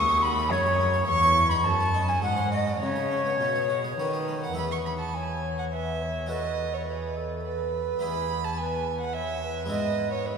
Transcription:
0.00 0.47 D#2 medium
0.00 0.52 D#2 medium
0.00 0.24 C#6 loud
0.00 0.24 C#6 medium
0.09 0.24 G#4 medium
0.22 0.38 F#4 soft
0.22 0.52 B5 loud
0.22 0.51 B5 medium
0.39 0.53 G#4 medium
0.50 1.07 F#2 medium
0.50 1.05 F#2 medium
0.50 1.07 C#5 medium
0.50 1.06 C#5 loud
0.50 0.67 C#5 medium
0.66 0.80 G#4 medium
0.80 0.95 C#4 medium
0.94 1.08 G#4 medium
1.07 1.64 E2 medium
1.07 1.61 E2 medium
1.07 1.51 C#6 loud
1.07 1.49 C#6 loud
1.23 1.37 C#5 medium
1.37 1.52 E4 medium
1.49 1.65 D#4 soft
1.49 1.66 B5 medium
1.49 1.56 B5 medium
1.64 2.22 F#2 medium
1.64 2.19 F#2 medium
1.64 2.10 A5 loud
1.64 2.10 A5 medium
1.80 1.95 C#5 soft
1.94 2.09 D#4 soft
2.08 2.23 C#4 soft
2.08 2.22 G#5 medium
2.08 2.23 G#5 medium
2.22 2.78 G#2 medium
2.22 2.81 G#2 medium
2.22 2.37 G#3 medium
2.22 2.52 F#5 medium
2.37 2.53 C5 soft
2.52 2.68 D#4 soft
2.52 2.81 D#5 medium
2.52 2.60 D#5 medium
2.67 2.82 C#4 soft
2.81 3.39 C#3 medium
2.81 3.37 C#3 soft
2.81 3.97 C#5 medium
2.81 4.26 C#5 medium
2.96 3.12 G#4 soft
3.11 3.27 C#4 soft
3.26 3.40 B3 soft
3.40 3.98 B2 medium
3.40 3.95 B2 medium
3.40 3.56 C#4 soft
3.56 3.71 G#4 soft
3.69 3.84 F#4 soft
3.84 4.00 G#4 soft
3.98 4.56 D#3 medium
3.98 4.54 D#3 medium
3.98 4.40 B4 medium
3.98 4.15 C#5 soft
4.14 4.29 G#4 soft
4.28 4.44 C#4 soft
4.44 4.55 G#4 soft
4.44 4.57 F#5 medium
4.53 7.98 E2 medium
4.53 6.24 B3 soft
4.53 6.25 E4 soft
4.53 6.26 G#4 soft
4.58 7.99 E2 soft
4.58 4.64 B5 medium
4.71 4.77 C#6 medium
4.86 4.92 B5 medium
5.00 5.16 A5 medium
5.14 5.75 C#5 medium
5.14 5.58 G#5 medium
5.59 5.64 F#5 medium
5.73 6.03 B4 soft
5.73 6.29 E5 medium
6.02 6.31 C#5 medium
6.26 7.96 B3 soft
6.26 7.97 F#4 soft
6.26 7.98 A4 soft
6.26 6.87 B4 medium
6.26 6.75 D#5 medium
6.74 6.86 C#5 medium
6.87 7.18 G#4 soft
6.87 7.44 B4 medium
7.17 8.02 A4 soft
7.44 8.02 B4 medium
7.99 9.65 B3 soft
7.99 9.66 E4 soft
7.99 9.67 G#4 soft
7.99 8.58 G#4 medium
7.99 8.46 B5 medium
8.03 9.73 E2 medium
8.03 9.67 E2 soft
8.45 8.59 A5 medium
8.58 9.17 B4 soft
8.58 9.00 G#5 medium
9.00 9.15 F#5 medium
9.13 9.42 C#5 soft
9.13 9.70 E5 medium
9.43 10.29 B4 medium
9.66 10.38 G#3 soft
9.66 10.38 B3 soft
9.66 10.38 E4 soft
9.70 10.38 G#2 medium
9.70 10.38 G#2 soft
9.70 10.38 G#4 soft
9.70 10.12 D#5 medium
10.12 10.28 C#5 medium
10.26 10.38 B4 medium
10.26 10.38 E5 medium

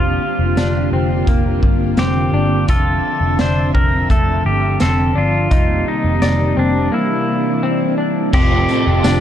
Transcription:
0.00 0.17 F1 medium
0.00 5.47 D3 medium
0.00 2.65 G3 medium
0.00 2.66 A#3 medium
0.00 5.47 C4 medium
0.00 0.57 F4 medium
0.00 0.89 F4 medium
0.00 2.65 F4 medium
0.39 0.55 F1 medium
0.57 0.88 F1 medium
0.57 0.93 D4 medium
0.57 snare medium
0.57 closed hi-hat medium
0.92 1.23 F1 medium
0.92 1.28 C4 medium
1.27 1.59 F1 medium
1.27 1.99 A#3 medium
1.27 kick medium
1.27 closed hi-hat medium
1.63 1.94 G1 medium
1.63 kick medium
1.97 2.29 F1 medium
1.97 2.33 C4 medium
1.97 2.65 G4 medium
1.97 snare medium
1.97 closed hi-hat medium
2.33 2.64 G1 medium
2.33 2.69 D4 medium
2.68 3.00 F1 medium
2.68 5.48 F3 medium
2.68 3.39 F4 medium
2.68 3.41 A4 medium
2.68 5.48 E5 medium
2.68 kick medium
2.68 closed hi-hat medium
3.21 3.37 F1 loud
3.39 3.70 F1 loud
3.39 3.74 D4 medium
3.39 3.74 C5 medium
3.39 snare loud
3.39 closed hi-hat medium
3.74 4.06 F1 medium
3.74 4.10 C4 medium
3.74 4.11 A#4 medium
3.74 kick medium
4.10 4.41 F1 medium
4.10 4.81 A3 medium
4.10 4.43 A4 medium
4.10 kick medium
4.10 closed hi-hat medium
4.45 4.76 G1 medium
4.45 4.81 G4 medium
4.80 5.12 F1 medium
4.80 5.15 C4 medium
4.80 5.17 A4 medium
4.80 snare medium
4.80 closed hi-hat medium
5.15 5.47 G1 medium
5.15 5.51 D4 medium
5.15 5.90 F4 medium
5.51 5.82 F1 medium
5.51 8.31 C3 medium
5.51 6.91 D#3 medium
5.51 8.31 G3 medium
5.51 8.31 A#3 medium
5.51 6.91 C4 medium
5.51 6.22 D#4 medium
5.51 kick loud
5.51 closed hi-hat medium
5.88 6.59 D#4 medium
6.04 6.20 F1 medium
6.22 6.53 F1 medium
6.22 6.57 D5 medium
6.22 snare medium
6.22 closed hi-hat medium
6.57 6.88 F1 medium
6.57 6.91 C4 medium
6.57 6.94 D4 medium
6.92 8.32 E3 medium
6.92 7.63 A#3 medium
6.92 8.32 D4 medium
6.92 7.95 E4 medium
7.63 7.97 C4 medium
7.98 8.33 D4 medium
8.33 8.64 F1 medium
8.33 9.20 A2 medium
8.33 9.20 C3 medium
8.33 8.68 F3 medium
8.33 9.20 F3 medium
8.33 8.69 A3 medium
8.33 9.04 C4 medium
8.33 8.69 C4 medium
8.33 9.20 C4 medium
8.33 8.68 F4 medium
8.33 9.20 G4 loud
8.33 8.66 A4 medium
8.33 kick loud
8.33 crash medium
8.68 9.20 C4 soft
8.68 9.20 F4 soft
8.68 9.20 A4 medium
8.68 closed hi-hat soft
8.87 9.02 F1 loud
9.04 9.20 F1 medium
9.04 9.20 D4 medium
9.04 snare loud
9.04 closed hi-hat medium
9.04 tambourine medium

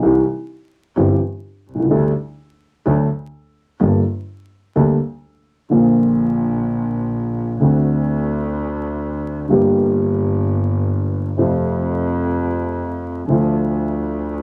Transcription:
0.02 0.22 C2 medium
0.02 0.22 C3 medium
0.02 0.22 E3 medium
0.02 0.22 G3 medium
0.02 0.22 C4 medium
0.02 0.22 G4 medium
0.97 1.17 G1 medium
0.97 1.17 G2 medium
0.97 1.17 E3 medium
0.97 1.17 G3 soft
0.97 1.17 C4 medium
0.97 1.17 G4 medium
1.68 1.90 C2 soft
1.75 1.80 B1 soft
1.80 1.86 C2 soft
1.85 1.91 C#2 medium
1.90 2.11 D2 medium
1.90 2.11 D3 medium
1.90 2.11 G3 medium
1.90 2.11 A3 medium
1.90 2.11 D4 medium
1.90 2.11 A4 medium
2.85 3.06 D2 medium
2.85 3.06 D3 medium
2.85 3.06 F#3 medium
2.85 3.06 A3 medium
2.85 3.06 D4 medium
2.85 3.06 A4 medium
3.80 4.01 G1 medium
3.80 4.01 G2 medium
3.80 4.01 G3 medium
3.80 4.01 A#3 soft
3.80 4.01 D4 soft
3.80 4.01 A4 medium
4.76 4.96 D2 medium
4.76 4.96 D3 medium
4.76 4.96 G3 medium
4.76 4.96 A#3 medium
4.76 4.96 D4 medium
4.76 4.96 A4 medium
5.70 7.52 A#1 medium
5.70 7.52 A#2 medium
5.70 7.51 D3 soft
5.70 7.52 F3 soft
5.70 7.52 A#3 soft
5.74 7.53 F4 medium
7.61 9.40 D2 medium
7.61 9.40 D3 medium
7.61 9.40 A3 soft
7.61 9.41 C4 soft
7.61 9.41 F#4 medium
9.48 11.29 G1 medium
9.48 11.30 G1 medium
9.48 11.30 G2 medium
9.48 11.29 D3 medium
9.48 11.29 G3 soft
9.48 11.30 A#3 medium
9.52 11.31 G4 medium
11.37 13.20 F2 medium
11.37 13.19 C3 medium
11.37 13.20 F3 medium
11.37 13.20 A3 soft
11.41 13.21 F4 medium
13.27 14.42 D2 medium
13.27 14.42 D3 medium
13.27 14.42 F3 soft
13.27 14.42 A3 soft
13.27 14.42 F4 medium

